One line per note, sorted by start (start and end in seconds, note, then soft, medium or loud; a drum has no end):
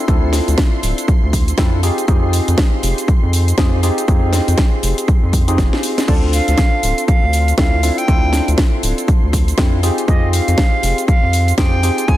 0.00 6.07 C6 medium
0.08 0.40 D2 loud
0.08 1.55 C4 loud
0.08 1.56 D4 medium
0.08 1.56 E4 medium
0.08 1.56 F4 medium
0.08 1.56 A4 loud
0.08 kick loud
0.08 closed hi-hat medium
0.08 cabasa soft
0.33 snare medium
0.33 open hi-hat medium
0.33 cabasa medium
0.48 0.55 D2 loud
0.48 closed hi-hat medium
0.48 cabasa soft
0.58 kick loud
0.58 snare loud
0.58 closed hi-hat medium
0.58 cabasa soft
0.83 0.93 D1 medium
0.83 open hi-hat loud
0.83 cabasa medium
0.98 closed hi-hat medium
0.98 cabasa soft
1.08 kick loud
1.08 closed hi-hat medium
1.08 cabasa soft
1.23 1.53 D2 medium
1.33 kick medium
1.33 open hi-hat medium
1.33 cabasa medium
1.48 closed hi-hat medium
1.48 cabasa soft
1.58 1.90 F2 medium
1.58 1.81 C4 medium
1.58 1.81 D4 medium
1.58 1.81 E4 medium
1.58 1.81 F4 medium
1.58 1.81 A4 loud
1.58 kick loud
1.58 snare loud
1.58 open hi-hat medium
1.58 cabasa soft
1.83 2.06 C4 medium
1.83 2.06 D#4 medium
1.83 2.06 F4 medium
1.83 2.06 G4 medium
1.83 2.06 G#4 medium
1.83 open hi-hat loud
1.83 cabasa medium
1.98 closed hi-hat medium
1.98 cabasa soft
2.08 2.40 F2 loud
2.08 3.56 C4 medium
2.08 3.56 D#4 medium
2.08 3.56 F4 medium
2.08 3.56 G4 medium
2.08 3.56 G#4 loud
2.08 kick loud
2.08 closed hi-hat medium
2.08 cabasa soft
2.33 open hi-hat loud
2.33 cabasa medium
2.48 2.55 F2 loud
2.48 closed hi-hat medium
2.48 cabasa soft
2.58 kick loud
2.58 snare loud
2.58 closed hi-hat medium
2.58 cabasa soft
2.83 2.93 F1 medium
2.83 open hi-hat loud
2.83 cabasa medium
2.98 closed hi-hat medium
2.98 cabasa soft
3.08 kick loud
3.08 closed hi-hat medium
3.08 cabasa soft
3.23 3.53 F2 medium
3.33 open hi-hat medium
3.33 cabasa medium
3.48 closed hi-hat medium
3.48 cabasa soft
3.58 3.90 F2 medium
3.58 3.81 C4 medium
3.58 3.81 D#4 medium
3.58 3.81 F4 medium
3.58 3.81 G4 medium
3.58 3.81 G#4 medium
3.58 kick loud
3.58 snare loud
3.58 closed hi-hat medium
3.58 cabasa soft
3.83 4.06 C4 medium
3.83 4.06 D#4 medium
3.83 4.06 F4 medium
3.83 4.06 G4 medium
3.83 4.06 G#4 medium
3.83 open hi-hat loud
3.83 cabasa medium
3.98 closed hi-hat medium
3.98 cabasa soft
4.08 4.40 F2 loud
4.08 5.45 C4 loud
4.08 5.45 D#4 medium
4.08 5.45 F4 medium
4.08 5.45 G4 medium
4.08 5.45 G#4 loud
4.08 kick loud
4.08 closed hi-hat medium
4.08 cabasa soft
4.33 snare medium
4.33 open hi-hat loud
4.33 cabasa medium
4.48 4.55 F2 medium
4.48 closed hi-hat medium
4.48 cabasa soft
4.58 kick loud
4.58 snare loud
4.58 closed hi-hat medium
4.58 cabasa soft
4.83 4.93 F1 medium
4.83 open hi-hat loud
4.83 cabasa medium
4.98 closed hi-hat medium
4.98 cabasa soft
5.08 kick loud
5.08 closed hi-hat medium
5.08 cabasa soft
5.23 5.60 F2 medium
5.33 kick medium
5.33 open hi-hat loud
5.33 cabasa medium
5.48 6.05 C4 medium
5.48 6.06 D#4 medium
5.48 6.06 F4 medium
5.48 6.06 G4 medium
5.48 6.06 G#4 medium
5.48 closed hi-hat medium
5.48 cabasa soft
5.58 5.68 F1 medium
5.58 kick loud
5.58 snare medium
5.58 open hi-hat medium
5.58 cabasa soft
5.73 snare medium
5.83 open hi-hat loud
5.83 cabasa medium
5.98 snare medium
5.98 closed hi-hat medium
5.98 cabasa soft
6.08 6.40 D2 loud
6.08 7.55 C4 loud
6.08 7.56 D4 medium
6.08 7.56 F4 medium
6.08 7.56 A4 loud
6.08 6.14 D5 medium
6.08 12.17 C6 medium
6.08 kick loud
6.08 closed hi-hat medium
6.08 crash medium
6.08 cabasa soft
6.33 7.04 F5 loud
6.33 open hi-hat loud
6.33 cabasa medium
6.48 6.55 D2 loud
6.48 closed hi-hat medium
6.48 cabasa soft
6.58 kick loud
6.58 snare loud
6.58 closed hi-hat medium
6.58 cabasa soft
6.83 6.93 D1 medium
6.83 open hi-hat loud
6.83 cabasa medium
6.98 closed hi-hat medium
6.98 cabasa soft
7.08 7.55 F5 loud
7.08 kick loud
7.08 closed hi-hat medium
7.08 cabasa soft
7.23 7.53 D2 medium
7.33 open hi-hat medium
7.33 cabasa medium
7.48 closed hi-hat medium
7.48 cabasa soft
7.58 7.90 D2 medium
7.58 7.81 C4 medium
7.58 7.81 D4 medium
7.58 7.81 E4 medium
7.58 7.81 F4 medium
7.58 7.81 A4 loud
7.58 8.00 F5 loud
7.58 kick loud
7.58 snare loud
7.58 closed hi-hat medium
7.58 cabasa soft
7.83 8.06 C4 medium
7.83 8.06 D4 medium
7.83 8.06 E4 medium
7.83 8.06 F4 medium
7.83 8.06 A4 medium
7.83 open hi-hat loud
7.83 cabasa medium
7.98 8.48 G5 loud
7.98 closed hi-hat medium
7.98 cabasa soft
8.08 8.40 D2 loud
8.08 9.55 C4 medium
8.08 9.56 D4 medium
8.08 9.56 E4 medium
8.08 9.56 F4 medium
8.08 9.56 A4 loud
8.08 kick loud
8.08 closed hi-hat medium
8.08 cabasa soft
8.33 snare medium
8.33 open hi-hat loud
8.33 cabasa medium
8.48 8.55 D2 medium
8.48 closed hi-hat medium
8.48 cabasa soft
8.58 kick loud
8.58 snare loud
8.58 closed hi-hat medium
8.58 cabasa soft
8.83 8.93 D1 medium
8.83 open hi-hat loud
8.83 cabasa medium
8.98 closed hi-hat medium
8.98 cabasa soft
9.08 kick loud
9.08 closed hi-hat medium
9.08 cabasa soft
9.23 9.53 D2 medium
9.33 kick medium
9.33 open hi-hat loud
9.33 cabasa medium
9.48 closed hi-hat medium
9.48 cabasa soft
9.58 9.90 F2 medium
9.58 9.81 C4 medium
9.58 9.81 D4 medium
9.58 9.81 E4 medium
9.58 9.81 F4 medium
9.58 9.81 A4 medium
9.58 kick loud
9.58 snare loud
9.58 open hi-hat medium
9.58 cabasa soft
9.83 10.06 C4 medium
9.83 10.06 D#4 medium
9.83 10.06 F4 medium
9.83 10.06 G4 medium
9.83 10.06 G#4 medium
9.83 open hi-hat loud
9.83 cabasa medium
9.98 closed hi-hat medium
9.98 cabasa soft
10.08 10.40 F2 loud
10.08 11.55 C4 loud
10.08 11.56 D#4 medium
10.08 11.56 F4 medium
10.08 11.56 G4 medium
10.08 11.56 G#4 loud
10.08 10.31 D#5 medium
10.08 kick loud
10.08 closed hi-hat medium
10.08 cabasa soft
10.33 11.04 F5 loud
10.33 open hi-hat loud
10.33 cabasa medium
10.48 10.55 F2 loud
10.48 closed hi-hat medium
10.48 cabasa soft
10.58 kick loud
10.58 snare loud
10.58 closed hi-hat medium
10.58 cabasa soft
10.83 10.93 F1 medium
10.83 open hi-hat loud
10.83 cabasa medium
10.98 closed hi-hat medium
10.98 cabasa soft
11.08 11.55 F5 loud
11.08 kick loud
11.08 closed hi-hat medium
11.08 cabasa soft
11.23 11.53 F2 medium
11.33 open hi-hat loud
11.33 cabasa medium
11.48 closed hi-hat medium
11.48 cabasa soft
11.58 11.90 F2 medium
11.58 11.81 C4 medium
11.58 11.81 D#4 medium
11.58 11.81 F4 medium
11.58 11.81 G4 medium
11.58 11.81 G#4 medium
11.58 12.09 G5 loud
11.58 kick loud
11.58 snare loud
11.58 closed hi-hat soft
11.58 cabasa soft
11.83 12.06 C4 medium
11.83 12.06 D#4 medium
11.83 12.06 F4 medium
11.83 12.06 G4 medium
11.83 12.06 G#4 medium
11.83 open hi-hat loud
11.83 cabasa medium
11.98 closed hi-hat medium
11.98 cabasa soft
12.08 12.17 F2 loud
12.08 12.17 C4 medium
12.08 12.17 D#4 medium
12.08 12.17 F4 medium
12.08 12.17 G#4 loud
12.08 12.17 G#5 loud
12.08 kick loud
12.08 closed hi-hat medium
12.08 cabasa soft